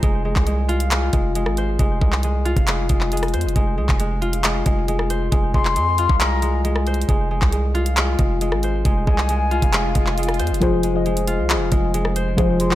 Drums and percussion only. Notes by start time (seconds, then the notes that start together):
0.03 kick, closed hi-hat
0.36 kick, clap
0.47 closed hi-hat
0.69 closed hi-hat
0.80 closed hi-hat
0.91 clap, closed hi-hat
1.13 kick, closed hi-hat
1.35 closed hi-hat
1.46 cross-stick
1.57 closed hi-hat
1.79 kick, closed hi-hat
2.02 kick
2.12 clap
2.23 closed hi-hat
2.46 closed hi-hat
2.57 kick, closed hi-hat
2.67 clap, closed hi-hat
2.89 kick, closed hi-hat
3.01 clap
3.12 closed hi-hat
3.17 closed hi-hat
3.23 cross-stick, closed hi-hat
3.28 closed hi-hat
3.34 closed hi-hat, open hi-hat
3.41 closed hi-hat
3.49 closed hi-hat
3.56 kick, closed hi-hat
3.89 kick, clap
4.00 closed hi-hat
4.22 closed hi-hat
4.33 closed hi-hat
4.44 clap, closed hi-hat
4.66 kick, closed hi-hat
4.88 closed hi-hat
4.99 cross-stick
5.10 closed hi-hat
5.32 kick, closed hi-hat
5.54 kick
5.65 clap
5.76 closed hi-hat
5.98 closed hi-hat
6.10 kick
6.20 clap, closed hi-hat
6.42 closed hi-hat
6.65 closed hi-hat
6.76 cross-stick
6.87 closed hi-hat, open hi-hat
6.94 closed hi-hat
7.01 closed hi-hat
7.09 kick, closed hi-hat
7.42 kick, clap
7.52 closed hi-hat
7.75 closed hi-hat
7.86 closed hi-hat
7.97 clap, closed hi-hat
8.19 kick, closed hi-hat
8.41 closed hi-hat
8.52 cross-stick
8.63 closed hi-hat
8.85 kick, closed hi-hat
9.07 kick
9.18 clap
9.29 closed hi-hat
9.51 closed hi-hat
9.62 kick, closed hi-hat
9.73 clap, closed hi-hat
9.95 kick, closed hi-hat
10.07 clap
10.18 closed hi-hat
10.23 closed hi-hat
10.29 cross-stick, closed hi-hat
10.34 closed hi-hat
10.39 closed hi-hat, open hi-hat
10.47 closed hi-hat
10.54 closed hi-hat
10.62 kick, closed hi-hat
10.83 closed hi-hat
11.06 closed hi-hat
11.17 closed hi-hat
11.27 closed hi-hat
11.50 clap, closed hi-hat
11.72 kick, closed hi-hat
11.94 closed hi-hat
12.05 cross-stick
12.16 closed hi-hat
12.38 kick, closed hi-hat
12.60 closed hi-hat
12.71 clap